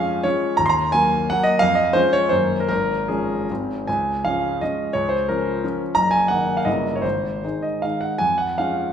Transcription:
grand piano
Already playing: F2 F3 G#3 C#4 F5 G#5
0.23 F3 G#3 C#4 C#5
0.57 D#2 A#5
0.66 A#5 C6
0.92 F#3 A#3 G#5
1.30 F#3 A#3 F#5
1.43 D#5
1.59 F2 F5
1.75 D#5
1.93 F3 G#3 C#4 C5
2.13 C#5
2.29 F#2 D#3 A#3 D#4 C5
2.60 A#4
2.69 G#1 A#4
3.08 F3 G#3 C#4 G#4
3.50 G#1 D#3 G#3 C4
3.87 C#2 G#5
4.25 F3 G#3 C#4 F5
4.61 F3 G#3 C#4 D#5
4.93 C#2 C#5
5.09 C5
5.29 F3 C#4 A#4
5.64 F3 C#4
5.95 F#1 A#5
6.11 G#5
6.28 D#3 A#3 D#4 F#5
6.57 F5
6.65 G1 C#3 A#3 E4 D#5
6.95 C#5
7.02 G#1 C5
7.44 D#3 G#3 D#4
7.62 D#5
7.82 D#3 G#3 D#4 F5
8.01 F#5
8.18 F2 G#5
8.38 F#5
8.58 F3 G#3 C#4 F5

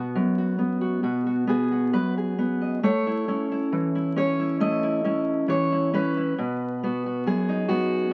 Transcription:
steel-string acoustic guitar
Already playing: B2 B3 F#4 B4
0.15 F#2
0.38 F#4
0.58 B3
0.81 F#4
1.03 B2 F#4
1.26 F#4
1.47 B3 F#4 G#4
1.72 F#4
1.93 F#2 B4
2.17 G#4
2.38 B3
2.61 D#5
2.83 A3 C#5
3.07 E4
3.28 C#4 E4
3.52 E4
3.72 E3
3.95 E4
4.16 C#4 C#5
4.39 E4
4.60 A3 D#5
4.83 E4
5.04 C#4 E4
5.48 E3 C#5
5.72 E4
5.93 C#4 B4
6.17 E4
6.38 B2
6.83 B3 F#4
7.06 F#4
7.26 F#2 G#4
7.49 D#4
7.68 B3 F#4

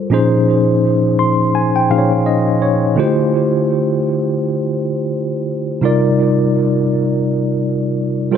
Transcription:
tine electric piano
0.10 A#2 F3 C#4 D#4 G#4 C5
1.19 C6
1.55 G#5
1.76 G5
1.90 A#2 F3 C#4 D#4 G#4 C5 F5
1.98 C#5
2.26 D#5
2.62 C#5
2.96 D3 A3 E4 F4 G4 C5
5.81 C3 G3 D#4 F4 A#4 D5
8.31 G3 F4 A4 A#4

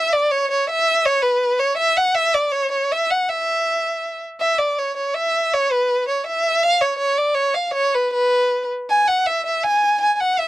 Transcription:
violin
Already playing: E5
0.13 D5
0.31 C#5
0.51 C#5
0.70 E5
1.05 C#5
1.22 B4
1.59 C#5
1.77 E5
1.97 F#5
2.14 E5
2.34 D5
2.51 C#5
2.71 C#5
2.92 E5
3.10 F#5
3.29 E5
4.40 E5
4.59 D5
4.78 C#5
4.97 C#5
5.15 E5
5.53 C#5
5.72 B4
6.08 C#5
6.27 E5
6.63 F5
6.81 C#5
6.98 C#5
7.18 D5
7.35 C#5
7.55 F5
7.74 C#5
7.95 B4
8.13 B4
8.90 G#5
9.08 F#5
9.26 E5
9.46 E5
9.63 G#5
10.01 G#5
10.15 G#5
10.20 F#5
10.39 E5

